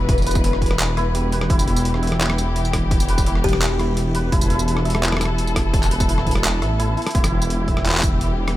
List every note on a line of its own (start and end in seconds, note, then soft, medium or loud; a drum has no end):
0.00 0.61 E1 loud
0.00 7.11 E3 medium
0.00 7.11 B3 medium
0.00 0.44 E4 medium
0.00 0.26 B4 loud
0.00 1.49 B4 medium
0.00 1.50 E5 medium
0.09 kick loud
0.09 closed hi-hat medium
0.18 tambourine soft
0.22 tambourine soft
0.26 1.32 B4 loud
0.26 closed hi-hat medium
0.26 tambourine soft
0.31 tambourine medium
0.35 kick loud
0.35 tambourine medium
0.44 0.96 E4 medium
0.44 closed hi-hat medium
0.53 cross-stick soft
0.62 1.49 E1 loud
0.62 kick medium
0.62 closed hi-hat soft
0.66 closed hi-hat medium
0.71 cross-stick medium
0.79 clap loud
0.79 closed hi-hat medium
0.97 1.50 E4 loud
0.97 cross-stick soft
0.97 closed hi-hat soft
1.15 4.28 G4 medium
1.15 closed hi-hat medium
1.32 3.09 B4 loud
1.32 closed hi-hat medium
1.41 cross-stick medium
1.50 2.02 E1 loud
1.50 1.67 E4 loud
1.50 4.31 G4 medium
1.50 kick loud
1.50 closed hi-hat medium
1.59 tambourine medium
1.67 2.20 E4 medium
1.67 closed hi-hat medium
1.76 tambourine medium
1.85 closed hi-hat medium
1.94 cross-stick soft
2.03 3.43 E1 loud
2.03 4.33 E5 medium
2.03 closed hi-hat soft
2.07 closed hi-hat medium
2.12 cross-stick medium
2.21 3.26 E4 medium
2.21 clap loud
2.21 closed hi-hat medium
2.30 cross-stick medium
2.38 closed hi-hat soft
2.38 tambourine medium
2.56 closed hi-hat medium
2.65 tambourine soft
2.73 kick medium
2.73 cross-stick medium
2.73 closed hi-hat medium
2.91 kick loud
2.91 closed hi-hat medium
3.00 tambourine medium
3.09 4.14 B4 loud
3.09 closed hi-hat medium
3.18 kick loud
3.18 tambourine medium
3.26 3.79 E4 medium
3.26 closed hi-hat medium
3.35 cross-stick soft
3.44 4.31 E1 loud
3.44 3.50 G4 loud
3.44 kick medium
3.44 closed hi-hat soft
3.49 closed hi-hat medium
3.53 3.58 G4 medium
3.53 cross-stick medium
3.62 clap loud
3.62 closed hi-hat medium
3.79 4.32 E4 medium
3.79 cross-stick soft
3.79 closed hi-hat soft
3.97 closed hi-hat medium
4.15 5.91 B4 loud
4.15 closed hi-hat medium
4.32 4.84 E1 loud
4.32 4.50 E4 loud
4.32 7.14 A4 loud
4.32 kick loud
4.32 closed hi-hat medium
4.41 tambourine medium
4.50 5.03 E4 medium
4.50 closed hi-hat medium
4.59 tambourine medium
4.68 closed hi-hat medium
4.77 cross-stick soft
4.85 6.25 E1 loud
4.85 6.61 E5 medium
4.85 closed hi-hat soft
4.90 closed hi-hat medium
4.95 cross-stick medium
5.03 6.09 E4 medium
5.03 clap loud
5.03 closed hi-hat medium
5.12 cross-stick medium
5.17 cross-stick medium
5.21 cross-stick medium
5.21 closed hi-hat soft
5.21 tambourine medium
5.25 cross-stick soft
5.38 closed hi-hat medium
5.47 tambourine soft
5.56 kick medium
5.56 cross-stick medium
5.56 closed hi-hat medium
5.73 kick loud
5.73 closed hi-hat medium
5.83 clap soft
5.83 tambourine medium
5.91 8.57 B4 loud
5.91 closed hi-hat medium
6.00 kick loud
6.00 tambourine medium
6.09 6.79 E4 medium
6.09 closed hi-hat medium
6.18 cross-stick soft
6.26 6.63 E1 loud
6.26 kick medium
6.26 closed hi-hat soft
6.31 closed hi-hat medium
6.35 cross-stick medium
6.44 clap loud
6.44 closed hi-hat medium
6.62 6.96 A1 loud
6.62 7.67 E5 medium
6.62 cross-stick soft
6.62 closed hi-hat soft
6.79 6.96 E4 loud
6.79 closed hi-hat medium
6.97 7.14 E4 medium
6.97 closed hi-hat soft
7.02 closed hi-hat soft
7.07 cross-stick medium
7.07 closed hi-hat soft
7.11 8.57 G4 medium
7.11 closed hi-hat medium
7.15 7.67 E1 loud
7.15 8.57 E3 medium
7.15 8.57 B3 medium
7.15 7.32 E4 loud
7.15 kick loud
7.15 closed hi-hat medium
7.24 cross-stick medium
7.24 tambourine medium
7.32 7.85 E4 medium
7.42 tambourine medium
7.50 closed hi-hat medium
7.68 8.57 E1 loud
7.68 8.57 E5 medium
7.68 kick medium
7.68 closed hi-hat soft
7.77 cross-stick medium
7.85 8.57 E4 medium
7.85 clap medium
7.85 closed hi-hat medium
7.89 clap medium
7.92 clap medium
7.95 clap medium
7.97 clap medium
8.00 kick loud
8.00 clap loud
8.00 tambourine medium
8.21 closed hi-hat medium
8.48 cross-stick medium
8.48 closed hi-hat soft